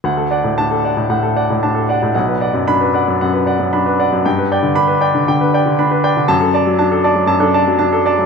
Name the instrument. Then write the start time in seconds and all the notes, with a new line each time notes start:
grand piano
0.04 D2 F#5
0.17 A4
0.31 D5 F#5
0.44 A2
0.58 D4 A5
0.71 A4
0.85 D5 F#5
0.97 A2
1.10 A2 F#5
1.23 A4
1.36 D5 F#5
1.50 A2
1.63 D4 A5
1.75 A4
1.89 D5 F#5
2.03 A2
2.15 B1 F#5
2.28 B4
2.41 D5 F#5
2.54 F#2
2.67 D4 B5
2.81 B4
2.94 D5 F#5
3.08 F#2
3.21 F#2 F#5
3.34 B4
3.46 D5 F#5
3.60 F#2
3.73 D4 B5
3.86 B4
4.00 D5 F#5
4.12 F#2
4.25 G2 G5
4.38 B4
4.52 D5 G5
4.63 D3
4.75 D4 B5
4.88 B4
5.01 D5 G5
5.15 D3
5.28 D3 G5
5.41 B4
5.54 D5 G5
5.66 D3
5.79 D4 B5
5.91 B4
6.04 D5 G5
6.17 D3
6.28 F#2 A5
6.41 A4
6.54 D5 A5
6.67 F#3
6.79 D4 A5
6.92 A4
7.04 D5 A5
7.15 F#3
7.27 F#2 A5
7.40 D4 A4
7.54 D5 A5
7.68 F#3
7.79 D4 A5
7.93 A4
8.06 D5 A5
8.18 F#3